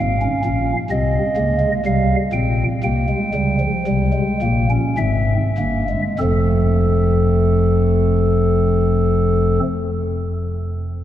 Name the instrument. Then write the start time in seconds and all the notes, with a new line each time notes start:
pipe organ
0.00 G#1 G#2 C4 F5
0.22 C#4
0.44 A#1 A#2 C#4
0.90 C2 C3 C4 D#5
1.37 C#2 C#3 A#3
1.60 G#3
1.86 C2 C3 G3 F5
2.33 A#1 A#2 C4 G5
2.83 C2 C3 A#3 G5
3.09 G#3
3.34 C#2 C#3 G3
3.60 F3
3.87 C2 C3 G3
4.13 G#3
4.42 A#1 A#2 A#3
4.70 C#4
4.98 G#1 G#2 C4 E5
5.58 G1 G2 A#3
5.89 G#3
6.19 F1 F2 F3 A3 C4 A4